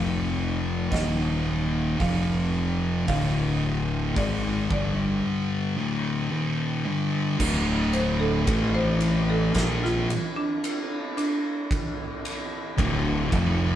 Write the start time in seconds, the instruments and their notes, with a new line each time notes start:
Already playing: fingered electric bass F1, distorted electric guitar F2 C3 F3, marimba F5
0.91 fingered electric bass D#1, distorted electric guitar D#2 A#2 D#3, marimba D#5, kick, snare, open hi-hat
1.99 fingered electric bass F1, distorted electric guitar F2 C3 F3, marimba F5, kick, open hi-hat
3.08 fingered electric bass D1, distorted electric guitar D2 A2 D3, marimba F5, kick, open hi-hat
4.16 fingered electric bass G#1, distorted electric guitar G#2 D#3 G#3, marimba D5, kick, open hi-hat
4.69 fingered electric bass G1, distorted electric guitar G2 D3 G3, marimba D5, kick
5.77 distorted electric guitar D2 A2 D3
6.30 distorted electric guitar D#2 A#2 D#3
6.86 distorted electric guitar G2 D3 G3
7.38 fingered electric bass D1, distorted electric guitar D2 A2 D3, kick, crash
7.93 marimba C5, ride
8.19 marimba A4
8.46 fingered electric bass A1, distorted electric guitar A2 E3 A3, kick, ride
8.74 marimba C5
9.01 ride
9.30 marimba A4
9.54 fingered electric bass A#1, distorted electric guitar A#2 F3 A#3, kick, snare, ride
9.84 marimba F4, snare
10.10 ride
10.36 marimba D4
10.64 ride
11.17 marimba D4, ride
11.71 kick, ride
12.25 ride
12.77 fingered electric bass D1, distorted electric guitar D2 A2 D3, kick, ride
13.32 fingered electric bass F1, distorted electric guitar F2 C3 F3, kick, ride